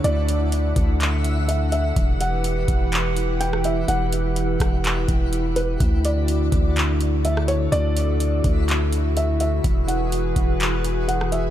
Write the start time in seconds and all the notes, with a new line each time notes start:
Already playing: D3 D4 E4 A4 F#5
0.04 D2 D5 E5, closed hi-hat
0.29 closed hi-hat
0.52 closed hi-hat
0.76 D2, kick, closed hi-hat
1.01 clap, closed hi-hat
1.24 closed hi-hat
1.48 E5, closed hi-hat
1.72 E5, closed hi-hat
1.96 E1 E3 E4 G4 B4, kick, closed hi-hat
2.21 F#5, closed hi-hat
2.44 closed hi-hat
2.68 E1, kick, closed hi-hat
2.93 clap, closed hi-hat
3.17 closed hi-hat
3.40 G5, closed hi-hat
3.53 cross-stick
3.64 E5, closed hi-hat
3.88 E1 F#5, closed hi-hat
4.13 closed hi-hat
4.36 closed hi-hat
4.60 E1, kick, cross-stick, closed hi-hat
4.85 clap, closed hi-hat
5.08 E1, kick, closed hi-hat
5.33 closed hi-hat
5.56 B4, closed hi-hat
5.80 D2 D3 D4 F#4 A4 D5 F#5, kick, closed hi-hat
6.05 D5, closed hi-hat
6.28 closed hi-hat
6.52 D2, kick, closed hi-hat
6.77 clap, closed hi-hat
7.01 closed hi-hat
7.25 E5, closed hi-hat
7.37 cross-stick
7.48 C#5, closed hi-hat
7.72 D2 D5 E5, closed hi-hat
7.97 closed hi-hat
8.20 closed hi-hat
8.44 D2, kick, closed hi-hat
8.69 clap, closed hi-hat
8.93 closed hi-hat
9.17 E5, closed hi-hat
9.40 E5, closed hi-hat
9.64 E1 E3 E4 G#4 B4, kick, closed hi-hat
9.88 F#5, closed hi-hat
10.12 closed hi-hat
10.36 E1, kick, closed hi-hat
10.60 clap, closed hi-hat
10.84 closed hi-hat
11.08 F#5, closed hi-hat
11.21 cross-stick
11.32 E5, closed hi-hat